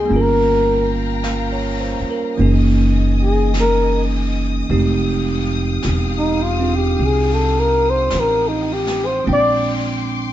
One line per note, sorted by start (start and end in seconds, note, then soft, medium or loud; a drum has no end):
0.00 0.11 C4 soft
0.00 0.12 D#4 soft
0.00 0.23 G#4 medium
0.00 0.14 G5 soft
0.05 2.36 G3 soft
0.05 2.36 A#3 soft
0.05 2.35 G5 medium
0.09 1.95 G1 medium
0.09 2.38 C#4 soft
0.09 2.40 F4 soft
0.09 2.36 F5 medium
0.09 2.35 A#5 medium
0.09 brush sweep soft
0.16 2.09 A#4 medium
0.21 0.90 A#4 medium
1.24 1.77 F5 soft
1.24 brush sweep soft
1.24 snare soft
1.24 hi-hat pedal soft
1.52 2.01 C#5 soft
1.80 2.16 C5 soft
2.00 muted upright bass stroke soft
2.10 2.50 A#4 soft
2.37 4.64 F#1 medium
2.37 4.67 E3 medium
2.37 4.68 A#3 soft
2.37 4.68 C#4 soft
2.37 4.69 D#4 soft
2.37 4.66 D#5 medium
2.37 4.66 G#5 medium
2.37 9.22 D#6 medium
2.37 brush sweep soft
2.42 4.70 G#4 medium
3.22 3.54 G#4 medium
3.54 brush sweep soft
3.54 snare soft
3.54 hi-hat pedal medium
3.60 4.03 A#4 medium
4.68 5.79 F1 medium
4.68 9.23 F3 medium
4.68 9.24 G#3 soft
4.68 6.58 C4 medium
4.68 9.26 D#4 medium
4.68 9.26 G4 medium
4.68 9.21 F5 medium
4.68 10.33 G5 medium
4.68 brush sweep soft
5.83 6.94 E1 medium
5.83 brush sweep soft
5.83 snare soft
5.83 hi-hat pedal soft
6.19 6.44 D#4 medium
6.42 6.77 F4 medium
6.59 9.25 C4 soft
6.59 9.26 D4 soft
6.59 9.26 F4 soft
6.59 9.27 G#4 soft
6.76 7.07 G4 medium
6.97 8.08 C2 medium
6.97 brush sweep soft
7.06 7.36 G#4 medium
7.34 7.61 A4 medium
7.60 7.92 A#4 medium
7.90 8.22 C5 medium
8.10 9.21 A1 medium
8.10 brush sweep soft
8.10 snare soft
8.10 hi-hat pedal medium
8.20 8.50 A#4 medium
8.48 8.75 D#4 medium
8.73 9.07 G4 medium
8.87 snare soft
9.06 9.25 C5 medium
9.24 10.33 A#1 medium
9.24 10.33 F3 soft
9.24 10.33 G#3 soft
9.24 10.33 C4 soft
9.24 10.33 D4 soft
9.24 10.33 C6 medium
9.24 10.33 D6 medium
9.24 brush sweep soft
9.29 9.76 D5 medium
9.29 10.33 G5 soft